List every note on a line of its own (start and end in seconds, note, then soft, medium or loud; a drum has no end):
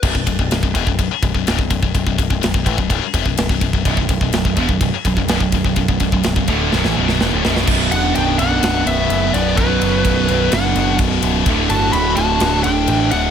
0.03 0.14 B0 medium
0.03 0.14 B1 medium
0.03 0.14 F#2 medium
0.03 kick loud
0.03 crash loud
0.14 0.26 B0 medium
0.14 0.25 B1 medium
0.14 0.26 F#2 medium
0.14 kick medium
0.26 0.38 B0 medium
0.26 0.38 B1 medium
0.26 0.38 F#2 medium
0.26 kick medium
0.26 ride medium
0.39 0.50 B0 medium
0.39 0.50 B1 medium
0.39 0.51 F#2 medium
0.39 kick medium
0.51 0.62 B0 medium
0.51 0.62 B1 medium
0.51 0.62 F#2 medium
0.51 snare loud
0.51 ride loud
0.63 0.74 B0 medium
0.63 0.74 B1 medium
0.63 0.75 F#2 medium
0.63 kick loud
0.75 0.86 E1 loud
0.75 0.86 E2 medium
0.75 0.87 B2 loud
0.75 kick medium
0.75 ride medium
0.87 0.98 B0 medium
0.87 0.98 B1 medium
0.87 0.98 F#2 medium
0.87 kick medium
0.98 1.10 B0 medium
0.98 1.10 B1 medium
0.98 1.11 F#2 medium
0.98 kick loud
0.98 ride loud
1.11 muted picked electric bass stroke soft
1.11 muted distorted electric guitar stroke medium
1.22 1.33 B0 medium
1.22 1.34 B1 medium
1.22 1.34 F#2 medium
1.22 kick medium
1.22 ride medium
1.34 1.45 B0 medium
1.34 1.46 B1 medium
1.34 1.47 F#2 medium
1.34 kick medium
1.47 1.58 B0 medium
1.47 1.57 B1 loud
1.47 1.58 F#2 loud
1.47 snare loud
1.47 ride medium
1.58 1.70 B0 medium
1.58 1.69 B1 medium
1.58 1.70 F#2 medium
1.58 kick medium
1.70 1.82 B0 medium
1.70 1.81 B1 medium
1.70 1.82 F#2 medium
1.70 kick medium
1.70 ride medium
1.82 1.94 B0 medium
1.82 1.93 B1 medium
1.82 1.94 F#2 medium
1.82 kick medium
1.94 2.06 B0 medium
1.94 2.05 B1 medium
1.94 2.06 F#2 medium
1.94 kick medium
1.94 ride medium
2.06 2.17 B0 medium
2.06 2.17 B1 medium
2.06 2.17 F#2 medium
2.06 kick medium
2.18 2.29 B0 medium
2.18 2.29 B1 medium
2.18 2.29 F#2 medium
2.18 kick medium
2.18 ride medium
2.30 2.42 B0 medium
2.30 2.40 B1 medium
2.30 2.41 F#2 medium
2.30 kick medium
2.41 2.53 B0 medium
2.41 2.53 B1 medium
2.41 2.53 F#2 medium
2.41 snare loud
2.41 ride loud
2.54 2.65 B0 medium
2.54 2.65 B1 medium
2.54 2.66 F#2 medium
2.54 kick loud
2.66 2.77 A1 loud
2.66 2.77 A2 medium
2.66 2.78 E3 medium
2.66 kick medium
2.66 ride medium
2.78 2.89 B0 medium
2.78 2.89 B1 medium
2.78 2.90 F#2 medium
2.78 kick medium
2.90 3.01 B0 medium
2.90 3.01 B1 medium
2.90 3.02 F#2 loud
2.90 kick loud
2.90 ride loud
3.02 muted picked electric bass stroke soft
3.02 muted distorted electric guitar stroke medium
3.14 3.25 F1 loud
3.14 3.25 F2 medium
3.14 3.26 C3 loud
3.14 kick medium
3.14 ride medium
3.25 3.37 B0 medium
3.25 3.37 B1 medium
3.25 3.37 F#2 medium
3.25 kick medium
3.37 3.48 B0 medium
3.37 3.49 B1 medium
3.37 3.50 F#2 medium
3.37 snare loud
3.37 ride loud
3.49 3.61 B0 medium
3.49 3.61 B1 medium
3.49 3.61 F#2 medium
3.49 kick medium
3.49 snare soft
3.61 3.73 B0 medium
3.61 3.73 B1 medium
3.61 3.73 F#2 medium
3.61 kick medium
3.61 ride medium
3.73 3.85 B0 medium
3.73 3.84 B1 medium
3.73 3.85 F#2 medium
3.73 kick medium
3.85 3.97 B0 loud
3.85 3.97 B1 loud
3.85 3.97 F#2 loud
3.85 kick medium
3.85 ride loud
3.97 4.08 B0 medium
3.97 4.09 B1 medium
3.97 4.09 F#2 medium
3.97 kick medium
4.08 4.20 B0 medium
4.08 4.21 B1 medium
4.08 4.21 F#2 medium
4.08 kick loud
4.08 ride medium
4.20 4.32 B0 medium
4.20 4.33 B1 medium
4.20 4.33 F#2 medium
4.20 kick medium
4.33 4.44 B0 medium
4.33 4.45 B1 medium
4.33 4.45 F#2 medium
4.33 snare loud
4.33 ride medium
4.45 4.56 B0 medium
4.45 4.57 B1 medium
4.45 4.58 F#2 medium
4.45 kick loud
4.57 4.68 E1 loud
4.57 4.69 E2 medium
4.57 4.69 B2 loud
4.57 kick medium
4.57 ride medium
4.68 4.80 B0 medium
4.68 4.81 B1 medium
4.68 4.81 F#2 medium
4.68 kick medium
4.80 4.92 B0 medium
4.80 4.93 B1 medium
4.80 4.94 F#2 medium
4.80 kick medium
4.80 ride loud
4.92 muted picked electric bass stroke soft
4.92 muted distorted electric guitar stroke medium
5.05 5.16 B0 medium
5.05 5.16 B1 medium
5.05 5.17 F#2 medium
5.05 kick medium
5.05 ride medium
5.17 5.27 B0 medium
5.17 5.28 B1 medium
5.17 5.29 F#2 medium
5.17 kick medium
5.28 5.39 B0 medium
5.28 5.40 B1 medium
5.28 5.41 F#2 loud
5.28 snare loud
5.28 ride loud
5.40 5.51 B0 medium
5.40 5.53 B1 medium
5.40 5.53 F#2 medium
5.40 kick medium
5.52 5.64 B0 medium
5.52 5.64 B1 medium
5.52 5.65 F#2 medium
5.52 kick medium
5.52 ride medium
5.64 5.76 B0 medium
5.64 5.76 B1 medium
5.64 5.77 F#2 medium
5.64 kick medium
5.76 5.88 B0 medium
5.76 5.87 B1 medium
5.76 5.88 F#2 medium
5.76 kick medium
5.76 ride loud
5.88 6.00 B0 medium
5.88 5.99 B1 medium
5.88 6.00 F#2 medium
5.88 kick medium
6.00 6.11 B0 medium
6.00 6.11 B1 medium
6.00 6.12 F#2 medium
6.00 kick medium
6.00 ride medium
6.12 6.23 B0 medium
6.12 6.23 B1 medium
6.12 6.24 F#2 medium
6.12 kick medium
6.23 6.36 B0 medium
6.23 6.35 B1 medium
6.23 6.36 F#2 medium
6.23 snare loud
6.23 ride loud
6.36 6.47 B0 medium
6.36 6.48 B1 medium
6.36 6.49 F#2 medium
6.36 kick medium
6.48 6.70 D1 medium
6.48 6.71 D2 medium
6.48 6.72 A2 medium
6.48 6.72 D3 loud
6.48 kick medium
6.48 ride medium
6.72 6.83 B0 medium
6.72 6.83 B1 medium
6.72 6.84 F#2 loud
6.72 snare medium
6.84 6.95 A1 loud
6.84 6.95 A2 medium
6.84 6.96 E3 loud
6.84 snare medium
6.96 7.18 B0 medium
6.96 7.19 B1 medium
6.96 7.20 F#2 medium
6.96 7.20 B2 loud
7.09 snare medium
7.20 7.31 E1 medium
7.20 7.31 E2 loud
7.20 7.32 B2 loud
7.20 snare medium
7.32 7.43 D1 medium
7.32 7.43 D2 medium
7.32 7.44 A2 medium
7.44 7.66 B0 medium
7.44 7.66 B1 medium
7.44 7.67 F#2 loud
7.44 7.68 B2 medium
7.44 snare loud
7.56 snare medium
7.67 7.89 B0 medium
7.67 8.42 B1 medium
7.67 8.38 F#2 medium
7.67 8.38 B2 medium
7.67 kick loud
7.67 crash loud
7.91 8.13 E1 medium
7.91 8.14 D4 medium
7.91 8.15 F#5 loud
7.91 ride medium
8.15 8.37 B0 medium
8.15 8.38 D4 medium
8.15 8.39 G5 loud
8.15 ride medium
8.38 8.61 B0 loud
8.38 9.55 B1 medium
8.38 9.57 F#2 medium
8.38 9.56 B2 medium
8.38 8.84 D4 medium
8.38 8.88 F#5 loud
8.38 ride medium
8.63 8.85 B0 medium
8.63 snare loud
8.63 ride loud
8.86 9.08 B0 medium
8.86 9.30 B3 medium
8.86 9.34 E5 loud
8.86 ride medium
9.10 9.32 F#1 medium
9.10 ride medium
9.33 9.55 B0 medium
9.33 9.56 B3 medium
9.33 9.58 D5 loud
9.33 ride medium
9.57 9.79 B0 medium
9.57 10.27 B1 medium
9.57 10.28 F#2 medium
9.57 10.49 F#3 medium
9.57 10.55 B4 loud
9.57 kick medium
9.57 ride medium
9.61 10.26 B2 loud
9.81 10.03 F#1 medium
9.81 ride medium
10.05 10.27 B0 loud
10.05 kick medium
10.05 ride loud
10.27 10.50 B0 medium
10.27 11.46 F#2 medium
10.27 11.45 B2 medium
10.27 ride medium
10.32 11.45 B1 medium
10.52 10.74 F#1 loud
10.52 10.97 D4 medium
10.52 10.97 F#5 medium
10.52 snare loud
10.52 ride loud
10.75 10.97 F#1 medium
10.75 ride medium
10.99 11.21 B0 medium
10.99 kick medium
10.99 ride loud
11.22 11.45 C#1 medium
11.22 ride medium
11.46 11.68 D1 medium
11.46 12.20 D2 medium
11.46 12.17 A2 loud
11.46 12.16 D3 medium
11.46 kick loud
11.46 ride loud
11.69 11.92 G1 loud
11.69 11.93 F#4 medium
11.69 11.95 A5 loud
11.69 ride medium
11.92 12.15 D1 medium
11.92 12.16 F#4 loud
11.92 12.18 B5 loud
11.92 ride loud
12.16 12.39 D1 loud
12.16 13.30 A2 medium
12.16 13.30 D3 medium
12.16 12.61 F#4 medium
12.16 12.61 A5 loud
12.16 ride medium
12.20 13.30 D2 medium
12.40 12.63 D1 loud
12.40 snare loud
12.40 ride loud
12.63 12.87 D1 medium
12.63 13.09 D4 medium
12.63 13.11 G5 loud
12.63 ride medium
12.88 13.10 A1 medium
12.88 ride loud
13.11 13.30 D1 medium
13.11 13.30 D4 medium
13.11 13.30 F#5 loud
13.11 ride medium